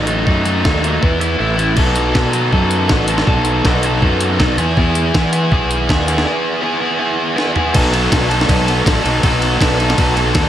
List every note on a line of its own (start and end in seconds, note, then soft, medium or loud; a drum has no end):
0.00 0.24 A1 medium
0.06 0.25 F#3 medium
0.06 0.26 A3 medium
0.06 0.25 D#4 medium
0.06 closed hi-hat medium
0.26 0.62 F#2 medium
0.26 0.44 F#3 medium
0.26 0.45 A3 medium
0.26 0.45 D#4 loud
0.26 kick loud
0.45 0.63 F#3 medium
0.45 0.63 A3 medium
0.45 0.64 D#4 medium
0.45 closed hi-hat medium
0.64 1.00 D#2 medium
0.64 0.82 F#3 medium
0.64 0.82 A3 loud
0.64 0.83 D#4 medium
0.64 kick loud
0.64 snare loud
0.83 1.01 F#3 medium
0.83 1.01 A3 medium
0.83 1.01 D#4 medium
0.83 closed hi-hat medium
1.02 1.38 E2 medium
1.02 1.19 E3 medium
1.02 1.19 B3 loud
1.02 1.20 E4 medium
1.02 kick loud
1.20 1.37 E3 medium
1.20 1.38 B3 medium
1.20 1.38 E4 medium
1.20 closed hi-hat medium
1.39 1.75 A1 medium
1.39 1.56 E3 medium
1.39 1.55 A3 medium
1.39 1.57 E4 medium
1.57 1.75 E3 medium
1.57 1.75 A3 medium
1.57 1.75 E4 medium
1.57 closed hi-hat medium
1.75 2.13 B1 medium
1.75 2.14 F#3 medium
1.75 2.14 B3 medium
1.75 2.14 D#4 medium
1.75 2.15 A4 medium
1.75 kick medium
1.75 crash medium
1.96 closed hi-hat loud
2.14 2.50 B2 medium
2.14 2.32 F#3 medium
2.14 2.33 B3 medium
2.14 2.33 D#4 loud
2.14 2.33 A4 medium
2.14 kick loud
2.14 snare loud
2.33 2.50 F#3 medium
2.33 2.52 B3 medium
2.33 2.51 D#4 medium
2.33 2.51 A4 loud
2.33 closed hi-hat medium
2.51 2.87 F#2 loud
2.51 2.88 F#3 loud
2.51 2.90 B3 loud
2.51 2.90 D#4 loud
2.51 2.89 A4 loud
2.51 kick medium
2.71 closed hi-hat medium
2.89 3.25 A1 medium
2.89 3.08 F#3 medium
2.89 3.09 B3 medium
2.89 3.09 D#4 medium
2.89 3.09 A4 medium
2.89 kick loud
2.89 snare loud
3.08 3.26 F#3 medium
3.08 3.27 B3 medium
3.08 3.26 D#4 medium
3.08 3.27 A4 medium
3.08 closed hi-hat medium
3.18 snare medium
3.27 3.62 B1 medium
3.27 3.64 F#3 medium
3.27 3.65 B3 medium
3.27 3.65 D#4 loud
3.27 3.65 A4 loud
3.27 kick loud
3.45 closed hi-hat loud
3.65 4.00 B1 loud
3.65 3.83 F#3 medium
3.65 3.84 B3 medium
3.65 3.84 D#4 medium
3.65 3.84 A4 loud
3.65 kick loud
3.65 snare loud
3.83 4.01 F#3 medium
3.83 4.01 B3 medium
3.83 4.01 D#4 loud
3.83 4.02 A4 loud
3.83 closed hi-hat medium
4.02 4.37 F#2 loud
4.02 4.38 F#3 medium
4.02 4.38 B3 medium
4.02 4.38 D#4 loud
4.02 4.38 A4 loud
4.02 kick loud
4.21 closed hi-hat medium
4.39 4.57 B1 medium
4.39 4.56 F#3 medium
4.39 4.58 B3 medium
4.39 4.57 D#4 medium
4.39 4.57 A4 medium
4.39 kick loud
4.39 snare loud
4.57 5.10 E2 loud
4.57 4.78 B3 medium
4.57 4.78 E4 loud
4.57 4.79 G#4 loud
4.57 closed hi-hat medium
4.77 5.14 B3 medium
4.77 5.15 E4 loud
4.77 5.15 G#4 loud
4.77 kick loud
4.95 closed hi-hat medium
5.14 5.49 E3 medium
5.14 5.32 B3 medium
5.14 5.33 E4 medium
5.14 5.33 G#4 medium
5.14 kick loud
5.14 snare loud
5.32 5.52 B3 medium
5.32 5.52 E4 medium
5.32 5.51 G#4 medium
5.32 closed hi-hat medium
5.51 5.86 B1 loud
5.51 5.89 B3 medium
5.51 5.90 E4 loud
5.51 5.89 G#4 loud
5.51 kick loud
5.71 closed hi-hat medium
5.89 6.24 D#2 medium
5.89 6.08 B3 medium
5.89 6.07 E4 medium
5.89 6.07 G#4 medium
5.89 kick loud
5.89 snare loud
6.08 6.25 B3 medium
6.08 6.25 E4 medium
6.08 6.25 G#4 medium
6.08 snare soft
6.08 closed hi-hat medium
6.18 snare medium
6.26 6.61 B3 loud
6.26 6.62 E4 loud
6.26 6.63 G#4 loud
6.62 6.80 B3 medium
6.62 6.81 E4 loud
6.62 6.80 G#4 loud
6.81 6.98 B3 medium
6.81 6.99 E4 medium
6.81 6.99 G#4 loud
6.99 7.35 B3 medium
6.99 7.35 E4 loud
6.99 7.36 G#4 loud
7.36 7.55 B3 medium
7.36 7.55 E4 medium
7.36 7.56 G#4 medium
7.36 snare medium
7.56 7.72 B3 medium
7.56 7.74 E4 medium
7.56 7.74 G#4 loud
7.56 floor tom medium
7.73 8.10 B1 loud
7.73 8.11 F#3 loud
7.73 7.94 B3 medium
7.73 7.93 D#4 loud
7.73 7.92 A4 loud
7.73 kick loud
7.73 crash loud
7.73 ride medium
7.93 8.11 B3 medium
7.93 8.11 D#4 medium
7.93 8.12 A4 medium
7.93 ride medium
8.11 8.47 B1 medium
8.11 8.29 F#3 medium
8.11 8.30 B3 medium
8.11 8.28 D#4 medium
8.11 8.27 A4 medium
8.11 kick loud
8.11 snare loud
8.11 ride loud
8.28 8.46 F#3 medium
8.28 8.48 B3 medium
8.28 8.48 D#4 medium
8.28 8.49 A4 loud
8.28 ride medium
8.41 snare medium
8.47 8.84 B1 loud
8.47 8.84 F#3 medium
8.47 8.69 B3 medium
8.47 8.67 D#4 medium
8.47 8.66 A4 medium
8.47 kick loud
8.47 ride loud
8.67 8.85 B3 medium
8.67 8.85 D#4 medium
8.67 8.86 A4 medium
8.67 ride medium
8.85 9.03 A1 medium
8.85 9.04 F#3 medium
8.85 9.05 B3 medium
8.85 9.03 D#4 medium
8.85 9.02 A4 medium
8.85 kick loud
8.85 snare loud
8.85 ride loud
9.03 9.22 B1 medium
9.03 9.22 F#3 medium
9.03 9.24 B3 medium
9.03 9.23 D#4 medium
9.03 9.24 A4 medium
9.03 ride medium
9.23 9.58 B1 loud
9.23 9.59 F#3 loud
9.23 9.43 B3 medium
9.23 9.41 D#4 loud
9.23 9.40 A4 loud
9.23 kick loud
9.23 ride loud
9.41 9.61 B3 medium
9.41 9.60 D#4 medium
9.41 9.61 A4 medium
9.41 ride medium
9.60 9.95 B1 medium
9.60 9.79 F#3 medium
9.60 9.79 B3 medium
9.60 9.77 D#4 medium
9.60 9.77 A4 medium
9.60 kick loud
9.60 snare loud
9.60 ride loud
9.78 9.96 F#3 medium
9.78 9.97 B3 medium
9.78 9.97 D#4 medium
9.78 9.98 A4 medium
9.78 ride medium
9.90 snare medium
9.97 10.32 B1 medium
9.97 10.33 F#3 medium
9.97 10.16 B3 medium
9.97 10.15 D#4 medium
9.97 10.14 A4 medium
9.97 kick loud
9.97 ride loud
10.15 10.34 B3 medium
10.15 10.35 D#4 medium
10.15 10.35 A4 medium
10.15 ride medium
10.34 10.49 D#2 loud
10.34 10.49 F#3 medium
10.34 10.49 B3 medium
10.34 10.49 D#4 medium
10.34 10.49 A4 medium
10.34 kick loud
10.34 snare loud
10.34 ride medium